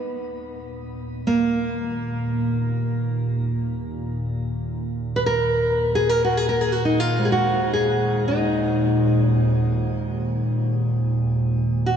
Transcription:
Already playing: B3
0.00 D#2 A#2
1.27 A#3
5.16 B4
5.26 A#4
5.95 G#4
6.09 A#4
6.25 F#4
6.37 G#4
6.49 A#4
6.61 G#4
6.72 F#4
6.85 D#4
7.00 F4
7.19 G#3
7.25 G#4
7.32 F#4
7.73 G#4
8.28 D#4
9.28 C#4
11.86 F#4

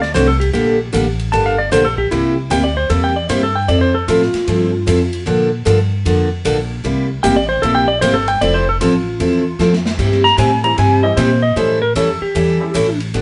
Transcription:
Already playing: D2
0.02 D5, snare
0.14 C2 C3 F#3 A3 D4 F#4 C5, hi-hat pedal, ride
0.27 A4
0.40 G4, ride
0.53 A#1 D3 G3 A#3 D4 G4 A4, ride
0.93 A1 D3 G3 A#3 D4 A4, hi-hat pedal, ride
1.19 ride
1.32 G1 D3 G3 A#3 D4 A4 A5, ride
1.46 F5
1.58 D5
1.71 A#1 D3 G3 A#3 D4 A4 C5, hi-hat pedal, ride
1.85 A4
1.98 G4, kick
2.11 C2 C3 G3 A#3 E4 G4, ride
2.50 D2 C3 G3 A#3 E4 G4 G5, hi-hat pedal, ride
2.64 D5
2.77 C5
2.89 E2 C3 G3 A#3 E4 G4 A4, ride
3.04 G5
3.16 D5
3.29 G2 C3 G3 A#3 E4 G4 C5, hi-hat pedal, ride
3.43 A4
3.56 G5
3.68 F2 F3 C4 E4 A4 D5, ride
3.81 C5
3.95 A4
4.08 A2 F3 C4 E4 F4 A4, hi-hat pedal, ride
4.22 snare
4.33 muted upright bass stroke, snare, ride
4.47 G2 F3 C4 E4 A4, ride
4.86 F2 F3 C4 E4 A4, hi-hat pedal, ride
5.13 ride
5.26 A#2 D3 F3 A#3 D4 A4, ride
5.65 G2 D3 F3 A#3 D4 A4, hi-hat pedal, ride
6.05 F2 D3 F3 A#3 D4 A4, ride
6.45 A#1 D3 F3 A#3 D4 A4, hi-hat pedal, ride
6.84 C2 C3 G3 A#3 E4 G4, ride
7.23 A1 C3 G3 A#3 E4 G4 G5, hi-hat pedal, ride
7.36 D5
7.49 C5
7.62 A#1 C3 G3 A#3 E4 G4 A4, ride
7.75 G5
7.88 D5
8.01 G1 C3 G3 A#3 E4 G4 C5, hi-hat pedal, ride
8.14 A4
8.28 G5, ride
8.41 F1 F3 C4 E4 A4 D5, ride
8.54 C5
8.69 A4
8.81 A1 F3 C4 E4 F4 A4, hi-hat pedal, ride
9.20 E2 F3 C4 E4 A4, ride
9.59 F2 F3 C4 E4 A4, snare, hi-hat pedal
9.73 snare
9.86 snare
9.99 G2 C3 G3 C4 E4 G4, kick, crash
10.12 snare
10.24 A#5, snare
10.37 A2 C3 G3 C4 E4 G4 G#5, hi-hat pedal, ride
10.63 E3 G3 C4 E4 G4 A#5, ride
10.78 G2 C3 G3 C4 E4 G4 G#5, ride
11.02 E3 G3 C4 E4 G4 D#5
11.17 A#2 C3 G3 C4 E4 G4 C5, hi-hat pedal, ride
11.42 D#5
11.56 A2 E3 G3 C#4 E4 A4 C5, ride
11.82 A#4
11.95 F2 E3 G3 C#4 E4 A4, hi-hat pedal, ride
12.21 G4, muted upright bass stroke
12.35 E2 E3 G3 C#4 E4 A4, ride
12.60 G3 A3 C#4 E4 G4
12.74 A1 E3 G3 C#4 E4 A4, hi-hat pedal, ride
13.00 ride
13.14 G1 D3 F3 B3 D4 G4, ride

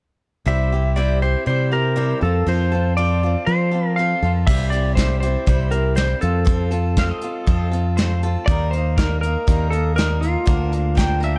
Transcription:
0.46 C2 C3 G3 C4 E4 G4 E5
0.72 C4 E4 G4
0.96 C3 G3 C4 E4 G4 D5
1.22 C4 E4 G4 C5
1.46 C3 G3 C4 E4 G4 C5
1.72 C4 E4 G4 A#4
1.96 C3 G3 C4 E4 G4
2.21 F2 C4 F4 A4
2.46 F2 F3 C4 F4 A4 C5
2.72 C4 F4 A4
2.97 F3 C4 F4 A4 D5
3.23 C4 F4 A4
3.46 F3 C4 F4 A4 C5
3.71 C4 F4 A4
3.96 F3 C4 F4 A4 F5
4.22 F2 C4 F4 A4
4.47 C2 C3 G3 C4 E4 G4 E5, kick, crash
4.70 E4 G4 D5, closed hi-hat
4.74 C4
4.95 G3 C4 E4 C5, kick, snare, closed hi-hat
5.01 G4
5.20 E4 G4 C5, closed hi-hat
5.26 C4
5.46 C2 C3 G3 C4 E4 G4, kick, closed hi-hat
5.71 C4 E4 G4 A#4, closed hi-hat
5.95 G3 C4 E4 G4 C5, snare, closed hi-hat
6.21 F2 F4 A4, closed hi-hat
6.25 C4
6.45 F3 C4 F4 A4, kick, closed hi-hat
6.71 C4 F4 A4, closed hi-hat
6.97 F3 C4 F4 A4 F5, kick, snare, closed hi-hat
7.11 D#5
7.21 C4 F4 A4, closed hi-hat
7.46 F2 F3 C4 F4 A4, kick, closed hi-hat
7.71 C4 F4 A4, closed hi-hat
7.97 F3 C4 F4 A4 C5, snare, closed hi-hat
8.23 C4 F4 A4, closed hi-hat
8.46 D#2 D#3 G3 A#3 D5, kick, closed hi-hat
8.51 D#4 A#4
8.71 A#4 C5, closed hi-hat
8.77 A#3 D#4
8.98 G3 A#3 D#4 A#4, kick, snare, closed hi-hat
9.21 D#4 A#4, closed hi-hat
9.26 A#3
9.47 D#2 D#3 G3 A#3 D#4 A#4, kick, closed hi-hat
9.70 A#3 D#4 A4 A#4, closed hi-hat
9.96 G3 A#3 D#4 A#4, snare, closed hi-hat
10.21 A#3 D#4 F4 A#4, closed hi-hat
10.46 D2 D3 F3 A#3 D4 A#4, kick, closed hi-hat
10.72 A#3 D4 A#4, closed hi-hat
10.95 F3 A#3 D4 A#4 G5, kick, snare, closed hi-hat
11.20 A#3 D4 A#4 E5, closed hi-hat

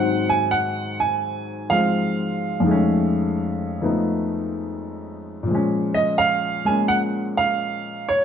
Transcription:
Already playing: G#2 D#3 F#3 C4 F#5
0.29 G#5
0.51 F#5
1.00 G#5
1.70 F3 G#3 C4 F5
2.60 F2 D#3
2.66 G#3 A3
2.71 C#4
3.81 F3 A3 B3 D#4
5.43 A#2
5.47 F3 G#3
5.55 C#4
5.94 D#5
6.18 F5
6.65 G#3 A#3 C#4 G#5
6.88 F#5
7.37 F5
8.09 C#5

